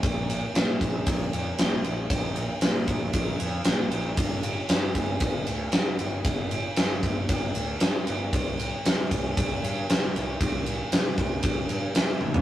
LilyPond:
<<
  \new Staff \with { instrumentName = "Picked electric bass" } { \clef bass \time 4/4 \key g \minor \tempo 4 = 116 bes,,4 bes,8 bes,,8 bes,,8 f,8 bes,8 bes,,8 | bes,,4 bes,8 bes,,8 bes,,8 f,8 bes,8 bes,,8 | g,,4 g,8 g,,8 g,,8 d,8 g,8 g,,8 | g,,4 g,8 g,,8 g,,8 d,8 g,8 g,,8 |
c,4 c8 c,8 c,8 g,8 c8 c,8 | c,4 c8 c,8 c,8 g,8 c8 a,,8 | }
  \new DrumStaff \with { instrumentName = "Drums" } \drummode { \time 4/4 <bd cymr>8 cymr8 <cymr sn>8 <bd cymr>8 <bd cymr>8 cymr8 <cymr sn>8 cymr8 | <bd cymr>8 cymr8 <cymr sn>8 <bd cymr>8 <bd cymr>8 cymr8 <cymr sn>8 cymr8 | <bd cymr>8 cymr8 <cymr sn>8 <bd cymr>8 <bd cymr>8 cymr8 <cymr sn>8 cymr8 | <bd cymr>8 cymr8 <cymr sn>8 <bd cymr>8 <bd cymr>8 cymr8 <cymr sn>8 cymr8 |
<bd cymr>8 cymr8 <cymr sn>8 <bd cymr>8 <bd cymr>8 cymr8 <cymr sn>8 cymr8 | <bd cymr>8 cymr8 <cymr sn>8 <bd cymr>8 <bd cymr>8 cymr8 <cymr sn>8 tommh16 tomfh16 | }
>>